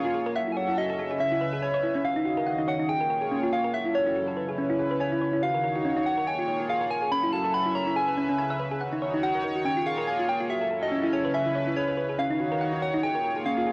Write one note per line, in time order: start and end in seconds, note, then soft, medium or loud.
0.00 0.35 A#3 medium
0.00 0.35 F4 medium
0.00 0.35 G#4 medium
0.00 0.34 C#5 medium
0.00 0.32 F5 loud
0.05 0.14 F4 loud
0.14 0.24 G#4 medium
0.26 0.35 A#4 loud
0.35 0.98 F#3 medium
0.35 2.87 C#4 medium
0.35 0.98 A4 medium
0.35 0.54 E5 loud
0.35 0.98 E5 medium
0.35 0.45 F#5 medium
0.47 0.56 E4 medium
0.52 0.58 G#5 medium
0.57 0.66 C#5 medium
0.57 0.79 F#5 loud
0.68 0.77 E4 medium
0.78 0.84 F#4 medium
0.78 1.22 D#5 loud
0.90 0.94 A4 medium
0.99 2.04 C#3 medium
0.99 1.08 G#4 medium
0.99 2.04 B4 medium
0.99 2.04 E5 medium
1.11 1.18 G#4 medium
1.20 1.31 C#4 medium
1.20 1.62 E5 loud
1.32 1.41 E4 loud
1.41 1.51 B4 medium
1.53 1.61 G#4 medium
1.62 1.72 G#4 medium
1.62 2.02 C#5 medium
1.74 1.83 C#5 loud
1.83 1.93 E4 medium
1.95 2.00 C#4 loud
2.04 2.88 D#3 medium
2.04 2.16 C#4 medium
2.04 2.88 F#4 medium
2.04 2.88 D#5 medium
2.04 2.70 F5 loud
2.16 2.25 D#4 loud
2.25 2.35 F#4 medium
2.37 2.46 A#4 loud
2.47 2.56 F#5 medium
2.58 2.67 D#4 medium
2.68 2.77 C#5 medium
2.68 2.91 F#5 loud
2.80 2.89 D#4 medium
2.89 3.73 A#3 medium
2.89 3.73 F4 medium
2.89 2.95 G#4 medium
2.89 3.73 G#4 medium
2.89 3.73 C#5 medium
2.89 3.52 G5 loud
3.01 3.05 A#4 medium
3.10 3.20 A#4 medium
3.22 3.29 G#4 medium
3.31 3.43 C#4 medium
3.43 3.52 F4 loud
3.52 3.62 G#4 medium
3.52 3.75 F5 loud
3.64 3.73 A#4 loud
3.74 4.36 F#3 medium
3.74 4.36 C#4 medium
3.74 4.36 E4 medium
3.74 4.36 A4 medium
3.74 3.97 E5 loud
3.74 3.83 F#5 medium
3.85 3.94 E4 medium
3.95 4.04 C#5 medium
3.95 5.00 C#5 loud
4.07 4.15 E4 medium
4.16 4.22 F#4 medium
4.28 4.32 A4 medium
4.37 5.42 C#3 medium
4.37 5.42 C#4 medium
4.37 5.42 E4 medium
4.37 5.41 B4 medium
4.37 4.46 B4 medium
4.49 4.56 G#4 medium
4.58 4.69 C#4 medium
4.70 4.79 E4 loud
4.79 4.89 G#4 medium
4.91 5.00 B4 loud
5.00 5.44 C#5 loud
5.00 5.10 G#5 medium
5.12 5.21 E4 medium
5.21 5.31 C#5 medium
5.33 5.42 E4 medium
5.43 6.26 D#3 medium
5.43 6.26 D#4 medium
5.43 5.48 F#4 medium
5.43 6.26 F#4 medium
5.43 7.10 C#5 medium
5.43 6.06 F5 loud
5.54 5.59 A#4 medium
5.64 5.73 A#4 medium
5.76 5.83 F#4 medium
5.85 5.96 C#4 medium
5.97 6.05 D#4 loud
6.06 6.15 F#4 medium
6.06 6.29 F#5 loud
6.18 6.27 A#4 loud
6.27 7.11 A#3 medium
6.27 7.11 F4 medium
6.27 7.11 G#4 medium
6.27 6.69 G5 loud
6.27 6.37 G#5 medium
6.39 6.48 F4 medium
6.48 6.58 C#5 medium
6.60 6.69 F4 medium
6.69 6.75 G#4 medium
6.69 6.92 F5 loud
6.81 6.86 A#4 medium
6.90 7.00 A#4 medium
6.90 7.13 G#5 loud
7.02 7.10 G#4 medium
7.12 7.74 F#3 medium
7.12 8.79 C#4 medium
7.12 7.23 C#4 medium
7.12 7.74 A4 medium
7.12 8.79 E5 medium
7.12 7.34 B5 loud
7.23 7.32 E4 loud
7.33 7.42 F#4 medium
7.33 7.56 A5 loud
7.45 7.53 A4 loud
7.54 7.63 F#5 medium
7.54 7.77 B5 loud
7.66 7.75 E4 medium
7.75 8.80 C#3 medium
7.75 8.80 B4 medium
7.75 7.85 C#5 medium
7.75 7.96 A#5 loud
7.87 7.96 E4 medium
7.96 8.02 G#4 medium
7.96 8.36 G#5 loud
8.08 8.12 B4 medium
8.17 8.28 C#4 medium
8.29 8.37 C#4 loud
8.38 8.44 G#5 medium
8.50 8.59 E5 loud
8.60 8.65 B4 medium
8.71 8.80 G#4 loud
8.80 9.64 D#3 medium
8.80 9.64 D#4 medium
8.80 9.64 F#4 medium
8.80 10.48 C#5 medium
8.80 8.90 F#5 medium
8.92 9.01 D#4 medium
9.02 9.11 C#5 medium
9.14 9.22 D#4 medium
9.23 9.29 F#4 medium
9.23 9.62 F#5 loud
9.35 9.39 A#4 medium
9.44 9.53 A#4 medium
9.56 9.63 F#4 medium
9.65 10.49 A#3 medium
9.65 9.76 C#4 medium
9.65 10.49 F4 medium
9.65 10.49 G#4 medium
9.65 9.88 G5 loud
9.77 9.86 F4 loud
9.86 9.96 G#4 medium
9.86 10.30 F5 loud
9.98 10.07 A#4 loud
10.07 10.17 G#5 medium
10.19 10.28 F4 medium
10.28 10.38 C#5 medium
10.28 10.49 G5 loud
10.40 10.49 F4 medium
10.50 11.12 F#3 medium
10.50 12.17 C#4 medium
10.50 12.17 E4 medium
10.50 10.55 F#4 medium
10.50 11.12 A4 medium
10.50 10.84 E5 loud
10.61 10.66 A4 medium
10.71 10.80 A4 medium
10.83 10.90 F#4 medium
10.83 11.14 D#5 loud
10.92 11.03 C#4 medium
11.04 11.12 E4 loud
11.13 12.18 C#3 medium
11.13 11.22 G#4 medium
11.13 12.18 B4 medium
11.13 11.34 C#5 medium
11.25 11.34 B4 loud
11.34 11.78 E5 loud
11.34 11.44 G#5 medium
11.46 11.55 E4 medium
11.55 11.65 C#5 medium
11.67 11.76 E4 medium
11.76 11.82 G#4 medium
11.76 12.20 C#5 loud
11.88 11.93 B4 medium
11.97 12.07 B4 medium
12.09 12.17 G#4 medium
12.19 13.02 D#3 medium
12.19 12.30 C#4 medium
12.19 13.02 D#4 medium
12.19 13.02 F#4 medium
12.19 13.72 C#5 medium
12.19 12.82 F5 loud
12.30 12.39 D#4 loud
12.40 12.49 F#4 medium
12.52 12.60 A#4 loud
12.61 12.70 F#5 medium
12.73 12.82 D#4 medium
12.82 12.92 C#5 medium
12.82 13.02 F#5 loud
12.94 13.03 D#4 medium
13.03 13.72 A#3 medium
13.03 13.72 F4 medium
13.03 13.09 G#4 medium
13.03 13.72 G#4 medium
13.03 13.47 G5 loud
13.15 13.20 A#4 medium
13.24 13.34 A#4 medium
13.36 13.44 G#4 medium
13.46 13.57 C#4 medium
13.46 13.72 F5 loud
13.57 13.66 F4 loud
13.67 13.72 G#4 medium